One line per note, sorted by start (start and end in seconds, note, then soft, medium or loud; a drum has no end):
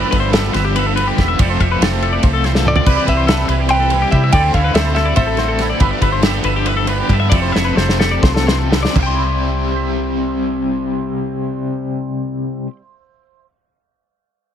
0.00 0.32 G2 loud
0.00 0.33 D3 loud
0.00 0.14 F3 loud
0.00 1.81 G3 medium
0.00 0.12 B3 loud
0.00 0.12 F4 loud
0.00 0.97 B4 medium
0.00 0.11 D5 medium
0.00 0.16 E5 medium
0.11 0.49 G1 medium
0.11 0.34 F3 medium
0.11 0.34 B3 medium
0.11 0.35 F4 medium
0.11 0.20 B4 medium
0.11 kick medium
0.11 ride medium
0.17 0.32 C5 medium
0.17 0.35 E5 medium
0.32 1.18 G2 medium
0.32 1.17 D3 medium
0.32 0.98 F3 loud
0.32 0.96 B3 medium
0.32 0.95 F4 medium
0.32 1.41 G4 medium
0.32 0.53 A4 medium
0.32 0.56 E5 medium
0.32 snare loud
0.32 ride loud
0.53 1.09 G1 loud
0.53 0.65 B4 medium
0.53 0.78 E5 medium
0.53 snare soft
0.53 ride medium
0.65 0.76 G4 medium
0.76 0.87 B4 medium
0.76 1.21 E5 medium
0.76 ride loud
0.87 0.96 A4 medium
0.96 1.37 D3 medium
0.96 1.18 F3 medium
0.96 1.18 B3 medium
0.96 1.19 F4 medium
0.96 1.07 B4 medium
0.96 1.37 B4 medium
0.96 ride medium
1.07 1.29 G4 medium
1.18 1.36 E1 medium
1.18 1.38 D3 medium
1.18 1.39 F3 medium
1.18 1.38 B3 medium
1.18 1.39 F4 medium
1.18 1.42 E5 medium
1.18 kick medium
1.18 snare soft
1.18 ride medium
1.28 1.39 E5 medium
1.39 1.57 F1 medium
1.39 1.80 F3 medium
1.39 2.24 F3 medium
1.39 1.61 A3 loud
1.39 1.60 C4 loud
1.39 1.58 F4 loud
1.39 1.63 G4 medium
1.39 1.82 A4 medium
1.39 1.50 D5 medium
1.39 kick loud
1.39 ride loud
1.50 1.61 C5 medium
1.59 1.79 F1 medium
1.59 1.81 A3 medium
1.59 1.83 C4 medium
1.59 1.83 F4 medium
1.59 1.71 E5 medium
1.59 kick medium
1.59 ride medium
1.64 2.05 G4 medium
1.72 1.83 B4 medium
1.80 2.17 F1 medium
1.80 2.64 F3 medium
1.80 2.84 A3 medium
1.80 2.45 A3 medium
1.80 2.45 C4 loud
1.80 2.44 F4 loud
1.80 2.87 A4 medium
1.80 2.03 C5 medium
1.80 snare loud
1.80 ride loud
2.02 2.89 G4 medium
2.02 2.13 A4 medium
2.02 ride medium
2.13 2.23 D5 medium
2.23 2.78 C2 medium
2.23 2.46 F3 medium
2.23 2.33 C5 medium
2.23 kick loud
2.23 ride medium
2.33 2.45 A4 medium
2.44 2.67 E3 medium
2.44 2.65 A3 medium
2.44 2.66 C4 medium
2.44 2.66 F4 medium
2.44 2.55 C5 medium
2.44 snare soft
2.44 ride medium
2.55 2.76 A4 medium
2.55 snare medium
2.65 2.87 D3 medium
2.65 2.85 F3 medium
2.65 2.85 A3 medium
2.65 2.88 C4 medium
2.65 2.86 F4 medium
2.65 3.09 D5 medium
2.65 mid tom medium
2.76 2.86 D5 medium
2.76 floor tom loud
2.86 2.96 C2 medium
2.86 3.28 C3 medium
2.86 4.33 C3 medium
2.86 3.29 E3 loud
2.86 3.09 G3 medium
2.86 3.08 C4 loud
2.86 3.07 E4 medium
2.86 3.52 E4 medium
2.86 3.09 G4 medium
2.86 2.96 B4 medium
2.86 kick loud
2.86 crash loud
2.90 3.29 B4 medium
2.97 3.06 D5 medium
3.07 3.44 C2 medium
3.07 3.30 G3 medium
3.07 3.30 C4 medium
3.07 3.31 E4 medium
3.07 3.51 G4 medium
3.07 3.17 B4 medium
3.07 3.70 E5 medium
3.07 kick medium
3.07 ride medium
3.17 3.27 C5 medium
3.27 4.13 C3 medium
3.27 4.13 E3 medium
3.27 3.93 G3 medium
3.27 3.94 G3 medium
3.27 3.92 C4 medium
3.27 3.48 A4 medium
3.27 3.71 B4 medium
3.27 snare loud
3.27 ride loud
3.31 3.92 E4 medium
3.48 4.04 C2 medium
3.48 3.60 E4 medium
3.48 3.59 B4 medium
3.48 ride medium
3.59 3.69 G4 medium
3.59 4.12 G4 soft
3.69 3.80 C5 medium
3.69 4.11 G5 loud
3.69 ride loud
3.73 4.32 B4 medium
3.80 3.91 A4 medium
3.90 4.33 G3 medium
3.90 4.14 G3 medium
3.90 4.14 C4 medium
3.90 4.15 E4 medium
3.90 4.34 E4 medium
3.90 4.02 B4 medium
3.90 ride medium
4.02 4.23 G4 medium
4.11 4.31 C3 medium
4.11 4.34 E3 medium
4.11 4.34 G3 medium
4.11 4.35 E4 medium
4.11 4.35 G4 medium
4.11 4.32 E5 medium
4.11 kick medium
4.11 ride medium
4.15 4.34 C4 medium
4.24 4.34 E5 medium
4.32 4.52 D2 medium
4.32 5.81 D3 medium
4.32 4.76 D3 loud
4.32 4.58 A3 medium
4.32 5.39 C4 medium
4.32 4.56 C4 loud
4.32 4.54 E4 medium
4.32 4.55 F#4 loud
4.32 4.75 A4 medium
4.32 4.44 D5 loud
4.32 4.53 G5 loud
4.32 kick loud
4.32 ride loud
4.44 4.55 C5 medium
4.54 4.73 D2 medium
4.54 4.77 C4 medium
4.54 4.96 E4 medium
4.54 4.78 F#4 medium
4.54 4.64 E5 medium
4.54 4.74 F5 medium
4.54 kick medium
4.54 ride medium
4.58 4.77 A3 medium
4.64 4.75 B4 medium
4.74 5.11 D2 medium
4.74 5.60 D3 medium
4.74 5.79 G3 medium
4.74 5.41 A3 medium
4.74 5.17 A4 medium
4.74 4.96 C5 medium
4.74 4.94 E5 medium
4.74 snare loud
4.74 ride loud
4.78 5.39 C4 medium
4.78 5.38 F#4 medium
4.95 5.61 E4 medium
4.95 5.07 A4 medium
4.95 5.15 E5 medium
4.95 snare soft
4.95 ride medium
5.06 5.16 D5 medium
5.16 5.72 A1 medium
5.16 5.81 A4 medium
5.16 5.28 C5 medium
5.16 5.61 E5 medium
5.16 kick loud
5.16 ride loud
5.27 5.38 A4 medium
5.37 5.81 A2 medium
5.37 5.60 C4 medium
5.37 5.82 C4 medium
5.37 5.61 F#4 medium
5.37 5.49 C5 medium
5.37 snare soft
5.37 ride medium
5.41 5.61 A3 medium
5.48 5.70 A4 medium
5.59 5.80 D3 medium
5.59 5.81 A3 medium
5.59 5.81 C4 medium
5.59 5.80 E4 medium
5.59 snare soft
5.59 ride medium
5.63 5.81 F#4 medium
5.70 5.81 D5 medium
5.79 5.90 G1 loud
5.79 6.22 G2 loud
5.79 6.22 D3 medium
5.79 6.04 F3 loud
5.79 7.76 G3 medium
5.79 6.02 B3 loud
5.79 6.01 D4 loud
5.79 5.91 B4 loud
5.79 6.88 B4 medium
5.79 6.02 E5 medium
5.79 kick loud
5.79 ride loud
5.91 6.02 D5 medium
6.02 6.39 G1 medium
6.02 6.24 F3 medium
6.02 6.24 B3 medium
6.02 6.24 D4 medium
6.02 6.12 B4 medium
6.02 6.25 E5 medium
6.02 kick medium
6.02 ride medium
6.12 6.23 C5 medium
6.22 7.10 G2 medium
6.22 7.10 D3 medium
6.22 6.89 F3 medium
6.22 6.88 B3 medium
6.22 6.87 D4 medium
6.22 7.32 G4 medium
6.22 6.44 A4 medium
6.22 6.45 E5 medium
6.22 snare loud
6.22 ride loud
6.44 7.01 G1 medium
6.44 6.55 B4 medium
6.44 6.68 E5 medium
6.44 ride medium
6.56 6.66 G4 medium
6.66 6.76 B4 medium
6.66 7.12 E5 medium
6.66 ride loud
6.77 6.87 A4 medium
6.87 7.29 D3 medium
6.87 7.11 F3 medium
6.87 7.11 B3 medium
6.87 7.12 D4 medium
6.87 6.98 B4 medium
6.87 7.30 B4 medium
6.87 ride medium
6.98 7.19 G4 medium
7.09 7.29 G2 medium
7.09 7.31 D3 medium
7.09 7.31 F3 medium
7.09 7.32 B3 medium
7.09 7.32 D4 medium
7.09 7.34 E5 medium
7.09 kick medium
7.09 ride medium
7.20 7.29 E5 medium
7.30 7.51 F1 loud
7.30 7.74 F2 loud
7.30 7.75 C3 medium
7.30 8.23 F3 medium
7.30 7.54 F3 loud
7.30 7.54 A3 loud
7.30 7.53 C4 loud
7.30 7.54 E4 medium
7.30 7.55 G4 medium
7.30 7.41 D5 medium
7.30 kick loud
7.30 ride loud
7.34 7.77 A4 medium
7.42 7.52 C5 medium
7.52 7.75 F1 medium
7.52 7.75 F3 medium
7.52 7.76 A3 medium
7.52 7.76 C4 medium
7.52 7.67 E4 medium
7.52 7.65 E5 medium
7.52 snare medium
7.65 7.99 G4 medium
7.65 7.76 B4 medium
7.75 8.16 F1 medium
7.75 8.70 F2 medium
7.75 8.68 C3 medium
7.75 8.48 F3 loud
7.75 8.46 A3 loud
7.75 8.93 A3 medium
7.75 8.45 C4 loud
7.75 8.96 A4 medium
7.75 7.99 C5 medium
7.75 snare medium
7.89 snare medium
8.00 8.93 G4 medium
8.00 8.11 A4 medium
8.00 snare medium
8.11 8.23 D5 medium
8.23 8.86 C2 loud
8.23 8.47 F3 medium
8.23 8.34 C5 medium
8.23 kick loud
8.23 snare medium
8.34 8.47 A4 medium
8.34 snare medium
8.47 8.70 E3 medium
8.47 8.69 F3 medium
8.47 8.70 A3 medium
8.47 8.71 C4 medium
8.47 8.59 C5 medium
8.47 snare loud
8.59 8.83 A4 medium
8.70 8.91 C3 medium
8.70 8.95 D3 medium
8.70 8.93 F3 medium
8.70 8.94 A3 medium
8.70 8.93 C4 medium
8.70 snare loud
8.83 8.95 D5 medium
8.83 snare medium
8.93 12.65 C2 medium
8.93 12.66 C3 medium
8.93 12.70 C3 medium
8.93 12.67 G3 medium
8.93 12.68 C4 medium
8.93 12.69 E4 loud
8.93 kick loud
8.93 floor tom loud
8.93 crash medium
8.97 12.70 G4 loud
8.97 9.06 E5 medium
9.03 12.80 G3 medium
9.03 12.72 G5 medium
9.03 12.76 C6 medium
9.15 9.71 E4 medium
9.26 9.76 G4 medium
9.71 13.45 C5 medium
9.76 13.50 E5 medium